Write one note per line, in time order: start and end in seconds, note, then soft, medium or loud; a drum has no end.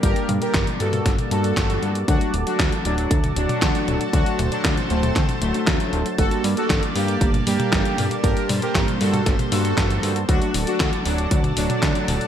0.00 0.14 G1 loud
0.00 2.05 G3 medium
0.00 1.28 G3 medium
0.00 2.04 A#3 medium
0.00 1.28 A#3 medium
0.00 1.28 D4 medium
0.00 0.28 G4 medium
0.00 1.28 A4 loud
0.00 0.28 A#4 loud
0.00 4.10 D5 medium
0.00 10.25 A5 medium
0.00 kick loud
0.00 closed hi-hat medium
0.16 closed hi-hat soft
0.29 0.40 G2 loud
0.29 closed hi-hat medium
0.29 high tom medium
0.42 0.67 G4 medium
0.42 0.67 A#4 loud
0.42 closed hi-hat soft
0.54 0.65 G1 loud
0.54 kick loud
0.54 snare loud
0.54 clap loud
0.54 closed hi-hat loud
0.67 closed hi-hat soft
0.67 high tom medium
0.80 1.02 G2 medium
0.80 1.14 F#4 medium
0.80 1.14 A4 loud
0.80 closed hi-hat medium
0.93 closed hi-hat soft
0.93 high tom medium
1.06 1.17 G1 medium
1.06 kick loud
1.06 snare medium
1.06 closed hi-hat loud
1.19 closed hi-hat soft
1.19 high tom medium
1.31 1.53 G2 loud
1.31 1.55 G3 medium
1.31 1.55 A#3 medium
1.31 1.55 D4 medium
1.31 1.98 F#4 medium
1.31 1.55 A4 medium
1.31 1.98 A4 loud
1.31 closed hi-hat medium
1.44 closed hi-hat soft
1.57 1.79 G1 loud
1.57 kick loud
1.57 snare loud
1.57 clap medium
1.57 closed hi-hat loud
1.70 closed hi-hat soft
1.82 2.04 G2 medium
1.82 closed hi-hat soft
1.95 closed hi-hat soft
2.08 2.19 D2 loud
2.08 3.59 F#3 medium
2.08 3.59 A3 medium
2.08 3.59 D4 medium
2.08 2.34 D4 medium
2.08 2.33 F#4 loud
2.08 6.15 F#4 medium
2.08 6.15 A4 medium
2.08 3.59 A4 loud
2.08 kick loud
2.08 closed hi-hat medium
2.21 closed hi-hat soft
2.34 2.45 D1 loud
2.34 closed hi-hat medium
2.47 2.72 D4 medium
2.47 2.72 F#4 loud
2.47 closed hi-hat soft
2.60 2.70 D2 loud
2.60 kick loud
2.60 snare loud
2.60 clap loud
2.60 closed hi-hat medium
2.72 closed hi-hat soft
2.85 3.07 D1 medium
2.85 3.19 F#3 medium
2.85 3.19 D4 medium
2.85 closed hi-hat medium
2.98 closed hi-hat soft
3.11 3.32 D2 medium
3.11 kick loud
3.11 closed hi-hat medium
3.24 closed hi-hat soft
3.24 high tom medium
3.36 3.47 D1 loud
3.36 4.03 F#3 medium
3.36 4.03 D4 loud
3.36 closed hi-hat medium
3.49 closed hi-hat soft
3.49 high tom medium
3.62 3.73 D2 loud
3.62 4.10 F#3 medium
3.62 4.10 A3 medium
3.62 4.10 D4 medium
3.62 4.10 A4 medium
3.62 kick loud
3.62 snare loud
3.62 clap loud
3.62 closed hi-hat medium
3.75 closed hi-hat soft
3.88 3.99 D1 medium
3.88 closed hi-hat soft
3.88 high tom medium
4.01 closed hi-hat soft
4.13 4.24 D2 loud
4.13 5.39 F#3 medium
4.13 5.39 A3 medium
4.13 4.39 D4 medium
4.13 5.39 D4 medium
4.13 4.39 F#4 loud
4.13 5.39 A4 loud
4.13 6.17 C5 medium
4.13 kick loud
4.13 closed hi-hat medium
4.26 closed hi-hat soft
4.39 4.50 D1 loud
4.39 closed hi-hat medium
4.39 high tom medium
4.52 4.77 F#3 medium
4.52 4.77 D4 medium
4.52 closed hi-hat soft
4.65 4.76 D2 loud
4.65 kick loud
4.65 snare loud
4.65 clap medium
4.65 closed hi-hat medium
4.77 closed hi-hat soft
4.77 high tom medium
4.90 5.12 D1 medium
4.90 5.24 A3 medium
4.90 5.24 C4 loud
4.90 closed hi-hat medium
5.03 closed hi-hat soft
5.03 high tom medium
5.16 5.27 D2 medium
5.16 kick loud
5.16 snare medium
5.16 clap medium
5.16 closed hi-hat medium
5.29 closed hi-hat soft
5.29 high tom medium
5.42 5.53 D1 medium
5.42 6.08 F#3 medium
5.42 6.08 A3 loud
5.42 closed hi-hat medium
5.54 5.64 F#3 medium
5.54 5.64 A3 medium
5.54 5.64 D4 medium
5.54 5.64 F#4 medium
5.54 closed hi-hat soft
5.67 5.78 D2 medium
5.67 5.90 F#3 medium
5.67 5.90 A3 medium
5.67 5.90 D4 medium
5.67 5.90 A4 medium
5.67 kick loud
5.67 snare loud
5.67 clap medium
5.67 closed hi-hat medium
5.80 closed hi-hat soft
5.93 6.04 D1 loud
5.93 6.16 F#3 medium
5.93 6.16 A3 medium
5.93 6.16 D4 medium
5.93 6.16 A4 medium
5.93 closed hi-hat soft
6.06 closed hi-hat soft
6.18 6.29 G1 loud
6.18 10.25 G3 medium
6.18 7.69 G3 loud
6.18 7.69 A#3 medium
6.18 10.25 A#3 medium
6.18 7.69 D4 medium
6.18 6.44 F#4 medium
6.18 7.69 A4 loud
6.18 6.44 A4 loud
6.18 8.22 D5 medium
6.18 kick loud
6.18 closed hi-hat medium
6.31 closed hi-hat soft
6.44 6.55 G2 loud
6.44 open hi-hat loud
6.57 6.82 F#4 medium
6.57 6.82 A4 loud
6.57 closed hi-hat soft
6.70 6.81 G1 loud
6.70 kick loud
6.70 snare loud
6.70 clap medium
6.70 closed hi-hat medium
6.83 closed hi-hat soft
6.96 7.17 G2 medium
6.96 7.29 A#3 medium
6.96 7.29 G4 loud
6.96 open hi-hat medium
7.08 closed hi-hat soft
7.21 7.43 G1 medium
7.21 kick loud
7.21 closed hi-hat medium
7.34 closed hi-hat soft
7.34 high tom medium
7.47 7.58 G2 medium
7.47 8.13 A#3 medium
7.47 8.13 G4 loud
7.47 open hi-hat loud
7.60 closed hi-hat soft
7.60 high tom medium
7.72 7.83 G1 loud
7.72 8.21 G3 medium
7.72 8.21 A#3 medium
7.72 8.21 D4 medium
7.72 8.21 A4 medium
7.72 kick loud
7.72 snare loud
7.72 clap medium
7.72 closed hi-hat medium
7.85 closed hi-hat soft
7.98 8.09 G2 medium
7.98 open hi-hat medium
7.98 high tom medium
8.11 closed hi-hat soft
8.24 8.35 G1 loud
8.24 9.49 G3 medium
8.24 9.49 A#3 medium
8.24 9.49 D4 medium
8.24 8.49 G4 medium
8.24 9.49 A4 loud
8.24 8.49 A#4 loud
8.24 10.27 C5 medium
8.24 kick loud
8.24 closed hi-hat medium
8.37 closed hi-hat soft
8.49 8.60 G2 loud
8.49 open hi-hat loud
8.49 high tom medium
8.62 8.87 G4 medium
8.62 8.87 A#4 loud
8.62 closed hi-hat soft
8.75 8.86 G1 loud
8.75 kick loud
8.75 snare loud
8.75 clap medium
8.75 closed hi-hat loud
8.88 closed hi-hat soft
8.88 high tom medium
9.01 9.22 G2 medium
9.01 9.34 F#4 medium
9.01 9.34 A4 medium
9.01 open hi-hat medium
9.14 closed hi-hat soft
9.14 high tom medium
9.26 9.37 G1 medium
9.26 kick loud
9.26 snare medium
9.26 closed hi-hat medium
9.39 closed hi-hat soft
9.39 high tom medium
9.52 9.74 G2 loud
9.52 9.75 G3 medium
9.52 9.75 A#3 medium
9.52 9.75 D4 medium
9.52 10.19 F#4 medium
9.52 9.75 A4 loud
9.52 10.19 A4 loud
9.52 open hi-hat loud
9.65 closed hi-hat soft
9.77 9.99 G1 loud
9.77 kick loud
9.77 snare loud
9.77 clap medium
9.77 closed hi-hat medium
9.90 closed hi-hat soft
10.03 10.25 G2 medium
10.03 open hi-hat loud
10.16 closed hi-hat soft
10.29 10.40 D2 loud
10.29 11.80 F#3 loud
10.29 11.80 A3 medium
10.29 10.54 D4 medium
10.29 11.80 D4 medium
10.29 10.54 F#4 loud
10.29 12.27 F#4 medium
10.29 12.27 A4 medium
10.29 11.80 A4 loud
10.29 12.27 D5 medium
10.29 12.27 A5 medium
10.29 kick loud
10.29 closed hi-hat loud
10.42 closed hi-hat soft
10.54 10.65 D1 loud
10.54 open hi-hat loud
10.67 10.93 D4 medium
10.67 10.93 F#4 medium
10.67 closed hi-hat soft
10.80 10.91 D2 loud
10.80 kick loud
10.80 snare loud
10.80 clap medium
10.80 closed hi-hat loud
10.93 closed hi-hat soft
11.05 11.27 D1 loud
11.05 11.39 F#3 medium
11.05 11.40 D4 loud
11.05 open hi-hat loud
11.18 closed hi-hat soft
11.31 11.53 D2 medium
11.31 kick loud
11.31 closed hi-hat loud
11.44 closed hi-hat soft
11.44 high tom medium
11.57 11.68 D1 medium
11.57 12.24 F#3 medium
11.57 12.24 D4 loud
11.57 open hi-hat loud
11.70 closed hi-hat soft
11.70 high tom medium
11.83 11.93 D2 loud
11.83 12.27 F#3 medium
11.83 12.27 A3 medium
11.83 12.27 D4 medium
11.83 12.27 A4 medium
11.83 kick loud
11.83 snare loud
11.83 clap medium
11.83 closed hi-hat loud
11.95 closed hi-hat soft
12.08 12.19 D1 medium
12.08 open hi-hat loud
12.08 high tom medium
12.21 closed hi-hat soft